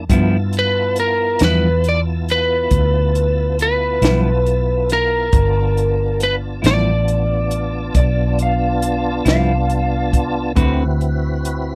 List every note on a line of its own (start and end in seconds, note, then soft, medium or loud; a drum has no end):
0.09 0.35 G2 medium
0.09 1.36 G2 medium
0.09 0.36 F3 medium
0.09 0.36 B3 medium
0.09 5.30 B3 medium
0.09 5.30 E4 medium
0.09 0.36 E4 medium
0.09 5.30 F4 medium
0.09 5.30 A5 medium
0.09 kick medium
0.09 closed hi-hat medium
0.53 closed hi-hat soft
0.59 0.99 B4 medium
0.96 1.43 A#4 medium
0.96 closed hi-hat medium
1.39 2.67 E2 medium
1.39 1.67 G2 soft
1.39 1.67 F3 soft
1.39 1.67 B3 medium
1.39 1.66 E4 medium
1.39 snare medium
1.39 closed hi-hat medium
1.44 1.87 B4 medium
1.84 closed hi-hat medium
1.89 2.00 D5 medium
2.28 3.56 B4 medium
2.28 closed hi-hat soft
2.71 3.98 D2 medium
2.71 kick medium
2.71 closed hi-hat medium
3.15 closed hi-hat medium
3.59 4.93 B4 medium
3.59 closed hi-hat medium
4.02 5.29 B1 medium
4.02 4.29 G2 medium
4.02 4.29 F3 medium
4.02 4.29 B3 medium
4.02 4.28 E4 medium
4.02 snare medium
4.02 closed hi-hat medium
4.46 closed hi-hat medium
4.89 6.23 A#4 medium
4.89 closed hi-hat medium
5.32 6.60 G1 medium
5.32 10.53 B3 medium
5.32 10.53 D4 medium
5.32 10.52 F4 medium
5.32 10.52 A5 medium
5.32 kick loud
5.32 closed hi-hat medium
5.77 closed hi-hat medium
6.20 6.35 B4 medium
6.20 closed hi-hat medium
6.62 7.91 A1 medium
6.62 6.90 G2 soft
6.62 6.90 F3 soft
6.62 6.89 B3 medium
6.62 6.89 E4 medium
6.62 closed hi-hat medium
6.66 10.10 D5 medium
6.66 snare loud
7.08 closed hi-hat medium
7.51 closed hi-hat medium
7.95 9.22 B1 medium
7.95 8.38 D5 medium
7.95 kick medium
7.95 closed hi-hat medium
8.39 9.25 F5 medium
8.39 closed hi-hat medium
8.82 closed hi-hat medium
9.25 10.53 C2 medium
9.25 9.53 G2 medium
9.25 9.52 F3 medium
9.25 9.52 B3 medium
9.25 9.52 E4 medium
9.25 10.54 F5 medium
9.25 snare medium
9.25 closed hi-hat medium
9.70 closed hi-hat medium
10.13 kick medium
10.13 closed hi-hat soft
10.55 11.75 D2 medium
10.55 10.82 D3 medium
10.55 10.83 C4 medium
10.55 11.75 C4 medium
10.55 11.75 E4 medium
10.55 11.75 F#4 medium
10.55 10.83 F#4 medium
10.55 11.75 B4 medium
10.55 10.83 B4 medium
10.55 kick loud
10.55 closed hi-hat medium
11.01 closed hi-hat soft
11.45 closed hi-hat medium